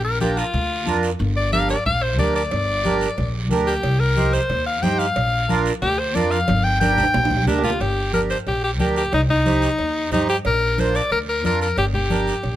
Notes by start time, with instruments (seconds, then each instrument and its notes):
Already playing: upright bass A#1
0.04 alto saxophone A#4
0.20 accordion D4 F4 A#4, alto saxophone G4, high conga, short guiro
0.37 alto saxophone F4, short guiro
0.54 upright bass D2, high conga, low conga, long guiro
0.86 upright bass F2, accordion D4 F4 A#4, high conga, short guiro
1.03 short guiro
1.19 upright bass G1, high conga, long guiro
1.36 alto saxophone D5
1.52 accordion D4 G4 A#4, alto saxophone F5, high conga, short guiro
1.69 alto saxophone D5, short guiro
1.86 upright bass A#1, alto saxophone F5, high conga, low conga, long guiro
2.02 alto saxophone C5
2.18 upright bass D2, accordion D4 G4 A#4, alto saxophone D5, high conga, low conga, short guiro
2.35 alto saxophone D5, short guiro
2.51 upright bass G1, cowbell, high conga, long guiro
2.84 accordion D4 G4 A#4, high conga, short guiro
3.01 short guiro
3.18 upright bass A#1, cowbell, high conga, low conga, long guiro
3.51 upright bass D2, accordion D4 G4 A#4, high conga, short guiro
3.67 alto saxophone G4, short guiro
3.83 upright bass C2, cowbell, high conga, long guiro
4.00 alto saxophone A#4
4.17 accordion D#4 G4 C5, high conga, short guiro
4.33 alto saxophone C5, short guiro
4.50 upright bass D#2, cowbell, high conga, low conga, long guiro
4.66 alto saxophone F5
4.82 upright bass G2, accordion D#4 G4 C5, alto saxophone G5, high conga, low timbale, short guiro
4.99 alto saxophone F5, short guiro
5.16 upright bass A#1, cowbell, high conga, long guiro
5.49 accordion D4 F4 A#4, high conga, short guiro
5.66 short guiro
5.82 upright bass D2, alto saxophone G4, cowbell, high conga, low conga, long guiro
5.99 alto saxophone C5
6.15 upright bass F2, accordion D4 F4 A#4, alto saxophone D5, high conga, short guiro
6.31 alto saxophone F5, short guiro
6.48 upright bass G1, cowbell, high conga, long guiro
6.64 alto saxophone G5
6.80 accordion D4 G4 A#4, alto saxophone G5, high conga, high timbale, short guiro
6.92 high timbale
6.98 low conga, short guiro
7.03 high timbale
7.14 upright bass A#1, cowbell, low conga, low timbale, long guiro
7.25 high timbale
7.31 low conga
7.37 low timbale
7.47 upright bass D2, accordion D4 G4 A#4, alto saxophone D4, low conga, low timbale, short guiro
7.58 low timbale
7.64 alto saxophone F4, low conga, short guiro
7.70 low timbale
7.80 upright bass G1, alto saxophone G4, cowbell, high conga, long guiro
8.13 accordion D4 G4 A#4, alto saxophone A#4, cowbell, high conga, short guiro
8.30 alto saxophone C5, short guiro
8.46 upright bass A#1, alto saxophone G4, cowbell, high conga, long guiro
8.64 alto saxophone G4
8.79 upright bass D2, accordion D4 G4 A#4, alto saxophone G4, cowbell, high conga, short guiro
8.96 alto saxophone G4, short guiro
9.13 upright bass C2, alto saxophone D#4, cowbell, high conga, long guiro
9.29 alto saxophone D#4, low conga
9.46 accordion D#4 G4 C5, cowbell, high conga, short guiro
9.62 short guiro
9.78 upright bass D#2, cowbell, high conga, long guiro
10.12 upright bass G2, accordion D#4 G4 C5, alto saxophone D#4, cowbell, high conga, low conga, short guiro
10.29 alto saxophone G4, short guiro
10.45 upright bass A#1, alto saxophone A#4, cowbell, high conga, long guiro
10.77 accordion D4 F4 A#4, alto saxophone C5, cowbell, high conga, short guiro
10.95 alto saxophone D5, short guiro
11.11 upright bass D2, alto saxophone A#4, cowbell, high conga, long guiro
11.29 alto saxophone A#4
11.44 upright bass F2, accordion D4 F4 A#4, alto saxophone A#4, cowbell, high conga, short guiro
11.61 alto saxophone A#4, short guiro
11.77 upright bass G1, alto saxophone G4, cowbell, high conga, long guiro
11.94 alto saxophone G4, low conga
12.10 accordion D4 G4 A#4, cowbell, high conga, short guiro
12.28 short guiro
12.43 upright bass A#1, cowbell, high conga, long guiro